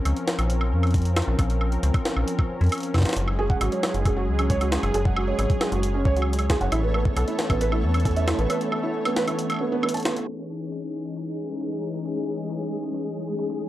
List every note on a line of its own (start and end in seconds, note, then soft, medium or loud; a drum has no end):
0.00 3.13 F3 medium
0.00 3.13 C4 medium
0.00 6.68 C#4 medium
0.00 3.13 A#4 medium
0.05 0.13 C#2 loud
0.05 closed hi-hat medium
0.05 high woodblock soft
0.17 closed hi-hat soft
0.28 snare loud
0.39 0.74 A#1 medium
0.39 closed hi-hat medium
0.39 high woodblock medium
0.50 closed hi-hat medium
0.61 high woodblock medium
0.72 1.22 F2 medium
0.83 closed hi-hat soft
0.83 high woodblock medium
0.87 closed hi-hat soft
0.91 kick loud
0.91 closed hi-hat soft
0.94 closed hi-hat medium
0.98 closed hi-hat soft
1.02 closed hi-hat soft
1.05 closed hi-hat medium
1.16 snare loud
1.16 high woodblock medium
1.22 closed hi-hat soft
1.28 1.35 A#1 medium
1.39 1.78 A#1 loud
1.39 kick loud
1.39 closed hi-hat medium
1.39 high woodblock medium
1.50 closed hi-hat soft
1.61 high woodblock soft
1.72 closed hi-hat soft
1.83 1.91 C#2 loud
1.83 closed hi-hat medium
1.94 kick loud
1.94 closed hi-hat soft
1.94 high woodblock medium
2.05 snare loud
2.17 2.24 A#1 medium
2.17 high woodblock soft
2.28 closed hi-hat medium
2.39 kick loud
2.39 high woodblock soft
2.61 2.69 F2 medium
2.61 closed hi-hat soft
2.64 closed hi-hat soft
2.67 closed hi-hat soft
2.69 closed hi-hat soft
2.72 closed hi-hat medium
2.72 high woodblock medium
2.75 closed hi-hat soft
2.78 closed hi-hat soft
2.80 closed hi-hat soft
2.83 closed hi-hat medium
2.94 kick medium
2.94 snare medium
2.94 high woodblock soft
2.96 kick medium
2.96 snare medium
2.99 kick medium
3.01 kick medium
3.01 snare medium
3.03 kick loud
3.03 snare medium
3.03 closed hi-hat soft
3.09 snare medium
3.13 3.56 F#1 loud
3.13 6.69 F#3 medium
3.13 6.69 G#3 medium
3.13 10.29 C#4 medium
3.13 6.69 G#4 medium
3.13 10.29 C#5 medium
3.13 snare loud
3.13 closed hi-hat medium
3.28 high woodblock medium
3.39 3.42 G#4 loud
3.50 3.55 F#5 medium
3.50 kick loud
3.61 3.69 G#1 loud
3.61 3.67 F#4 medium
3.61 closed hi-hat medium
3.61 high woodblock medium
3.72 3.78 C#5 medium
3.72 closed hi-hat soft
3.83 3.89 C#5 medium
3.83 snare loud
3.83 high woodblock soft
3.94 4.29 F#1 medium
3.94 closed hi-hat soft
4.05 4.09 G#4 medium
4.05 kick loud
4.05 closed hi-hat medium
4.05 high woodblock soft
4.17 4.22 F#4 medium
4.28 4.78 C#2 medium
4.39 4.47 C#4 medium
4.39 closed hi-hat soft
4.39 high woodblock medium
4.50 4.55 C#5 loud
4.50 kick medium
4.50 closed hi-hat medium
4.61 4.64 F#4 medium
4.61 closed hi-hat medium
4.61 high woodblock soft
4.72 snare loud
4.83 4.91 F#1 medium
4.83 closed hi-hat soft
4.83 high woodblock soft
4.94 5.33 F#1 loud
4.94 4.98 G#4 loud
4.94 closed hi-hat medium
5.05 5.11 F#5 medium
5.05 kick loud
5.17 5.22 F#4 medium
5.17 high woodblock medium
5.28 5.33 C#5 medium
5.39 5.46 G#1 loud
5.39 5.44 C#5 medium
5.39 closed hi-hat medium
5.39 high woodblock medium
5.50 kick loud
5.50 closed hi-hat soft
5.61 5.64 G#4 medium
5.61 snare loud
5.61 high woodblock medium
5.72 6.07 F#1 medium
5.72 5.78 F#4 medium
5.72 closed hi-hat medium
5.83 closed hi-hat medium
5.94 6.03 C#4 medium
6.05 6.56 C#2 medium
6.05 6.11 C#5 loud
6.05 kick loud
6.17 6.20 F#4 medium
6.17 closed hi-hat soft
6.22 high woodblock medium
6.33 closed hi-hat medium
6.39 closed hi-hat soft
6.39 high woodblock soft
6.50 6.53 G#4 loud
6.50 kick loud
6.50 snare loud
6.61 6.69 F#1 medium
6.61 6.67 F#5 medium
6.61 closed hi-hat soft
6.72 7.11 A1 loud
6.72 10.24 E3 medium
6.72 10.24 A3 medium
6.72 10.24 B3 medium
6.72 6.78 E4 medium
6.72 10.24 A4 medium
6.72 closed hi-hat medium
6.72 high woodblock medium
6.83 6.89 B4 medium
6.94 7.00 B4 medium
6.94 high woodblock medium
7.05 kick loud
7.17 7.24 B1 loud
7.17 7.20 A4 medium
7.17 closed hi-hat medium
7.17 high woodblock medium
7.28 7.33 E4 medium
7.28 closed hi-hat soft
7.39 snare loud
7.50 7.85 A1 medium
7.50 7.58 B3 medium
7.50 kick loud
7.50 closed hi-hat medium
7.50 high woodblock medium
7.61 7.67 B4 loud
7.61 closed hi-hat medium
7.72 7.75 E4 medium
7.72 high woodblock medium
7.83 8.33 E2 medium
7.94 closed hi-hat soft
7.94 high woodblock medium
8.00 closed hi-hat soft
8.05 8.09 A4 loud
8.05 kick loud
8.05 closed hi-hat medium
8.11 closed hi-hat soft
8.16 8.22 E5 medium
8.16 closed hi-hat soft
8.28 8.33 E4 medium
8.28 snare loud
8.28 high woodblock medium
8.39 8.46 A1 medium
8.39 8.44 B4 medium
8.39 closed hi-hat soft
8.50 8.55 B4 medium
8.50 closed hi-hat medium
8.50 high woodblock medium
8.61 closed hi-hat soft
8.72 8.75 A4 medium
8.72 high woodblock medium
8.83 8.89 E4 medium
9.05 9.14 B3 medium
9.05 closed hi-hat soft
9.05 high woodblock medium
9.16 9.22 B4 loud
9.16 snare loud
9.28 9.31 E4 medium
9.28 closed hi-hat medium
9.28 high woodblock medium
9.39 closed hi-hat medium
9.50 closed hi-hat soft
9.50 high woodblock medium
9.52 high woodblock soft
9.54 high woodblock soft
9.61 9.67 B3 medium
9.72 9.80 B3 loud
9.83 9.89 B3 loud
9.83 high woodblock medium
9.89 closed hi-hat medium
9.94 10.00 A5 medium
9.94 closed hi-hat soft
9.97 closed hi-hat soft
10.00 closed hi-hat soft
10.03 10.11 B3 medium
10.03 snare loud
10.03 closed hi-hat soft
10.16 closed hi-hat soft
10.28 13.69 E3 medium
10.28 13.69 G#3 medium
10.28 13.69 C#4 medium
10.28 13.69 D#4 medium
10.28 13.69 G#4 medium
10.28 closed hi-hat medium
10.72 closed hi-hat medium
11.05 closed hi-hat medium
11.16 closed hi-hat medium
11.50 closed hi-hat soft
11.61 closed hi-hat medium
11.72 closed hi-hat medium
11.94 closed hi-hat soft
12.05 closed hi-hat medium
12.50 closed hi-hat medium
12.61 closed hi-hat soft
12.83 closed hi-hat medium
12.94 closed hi-hat medium
13.28 closed hi-hat soft
13.39 closed hi-hat medium
13.50 closed hi-hat medium